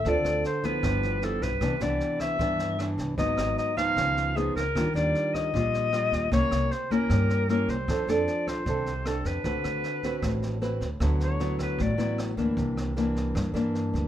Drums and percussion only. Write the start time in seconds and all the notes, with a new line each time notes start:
0.05 kick, snare
0.25 cross-stick, snare
0.44 snare
0.63 kick, snare
0.83 kick, cross-stick, snare
1.03 snare
1.22 snare
1.42 kick, snare
1.61 kick, cross-stick, snare
1.80 snare
2.00 snare
2.20 kick, cross-stick, snare
2.39 kick, snare
2.59 snare
2.79 cross-stick, snare
2.98 kick, snare
3.18 kick, snare
3.37 cross-stick, snare
3.58 snare
3.77 kick, snare
3.97 kick, cross-stick, snare
4.17 snare
4.36 snare
4.56 kick, snare
4.75 kick, cross-stick, snare
4.96 snare
5.15 snare
5.34 kick, cross-stick, snare
5.54 kick, snare
5.74 snare
5.93 cross-stick, snare
6.12 kick, snare
6.32 kick, snare
6.51 cross-stick, snare
6.71 snare
6.91 kick, snare
7.10 kick, cross-stick, snare
7.29 snare
7.49 snare
7.68 kick, snare
7.88 kick, cross-stick, snare
8.08 snare
8.27 snare
8.47 kick, cross-stick, snare
8.66 kick, snare
8.86 snare
9.05 cross-stick, snare
9.25 kick, snare
9.44 kick, snare
9.64 cross-stick, snare
9.84 snare
10.03 kick, snare
10.22 kick, cross-stick, snare
10.42 snare
10.62 snare
10.81 kick, snare
11.00 kick, cross-stick, snare
11.20 snare
11.40 snare
11.59 kick, cross-stick, snare
11.79 kick, snare
11.99 snare
12.18 cross-stick, snare
12.37 kick, snare
12.57 kick, snare
12.77 cross-stick, snare
12.97 snare
13.16 kick, snare
13.35 kick, cross-stick, snare
13.55 snare
13.75 snare
13.94 kick, snare